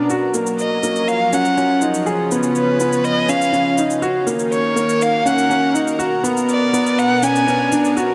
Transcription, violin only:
0.59 1.09 D#5 medium
1.08 1.35 F5 loud
1.34 1.82 F#5 medium
2.56 3.06 B4 medium
3.04 3.31 D#5 medium
3.29 3.79 F5 loud
4.53 5.04 C#5 medium
5.02 5.29 F5 loud
5.27 5.76 F#5 loud
6.50 7.00 D5 medium
6.99 7.25 F#5 loud
7.23 7.72 G#5 loud

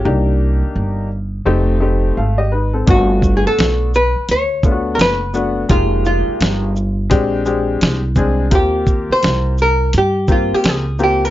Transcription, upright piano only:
0.05 1.06 A#3 medium
0.05 1.07 D4 medium
0.05 1.06 D#4 medium
0.05 1.07 G4 medium
1.45 1.76 A3 medium
1.45 1.76 C4 medium
1.45 1.76 D#4 medium
1.45 1.76 G4 medium
1.80 2.35 A3 medium
1.80 2.17 C4 medium
1.80 2.17 D#4 medium
1.80 2.17 G4 medium
2.17 2.38 A4 medium
2.17 2.38 F5 medium
2.38 2.51 G4 medium
2.38 2.51 D#5 medium
2.52 2.73 D#4 medium
2.52 2.73 B4 medium
2.73 3.08 C4 soft
2.73 3.07 A4 medium
2.86 3.88 A3 medium
2.86 3.89 B3 medium
2.86 3.89 D4 medium
2.86 3.89 F#4 medium
4.64 5.17 A3 medium
4.64 5.18 B3 medium
4.64 5.18 D4 medium
4.64 4.73 F4 medium
4.72 5.21 F#4 medium
5.34 5.62 A3 medium
5.34 5.62 B3 medium
5.34 5.62 D4 medium
5.34 5.62 F#4 medium
5.69 6.71 G#3 medium
5.69 6.71 A#3 medium
5.69 6.71 D#4 medium
5.69 6.71 G4 medium
7.10 7.40 G#3 loud
7.10 7.41 C4 medium
7.10 7.41 D4 medium
7.10 7.41 G4 loud
7.46 8.00 G#3 medium
7.46 8.00 C4 medium
7.46 8.00 D4 medium
7.46 8.00 G4 medium
8.16 8.44 G#3 medium
8.16 8.44 C4 medium
8.16 8.45 D4 medium
8.16 8.45 G#4 medium
8.51 9.53 A#3 medium
8.51 9.53 C4 medium
8.51 9.53 F4 medium
8.51 9.54 G4 medium
10.28 10.82 A#3 medium
10.28 10.82 C4 medium
10.28 10.82 F4 medium
10.28 10.83 G4 medium
10.99 11.27 A#3 medium
10.99 11.27 C4 medium
10.99 11.27 F4 medium
10.99 11.27 G4 medium

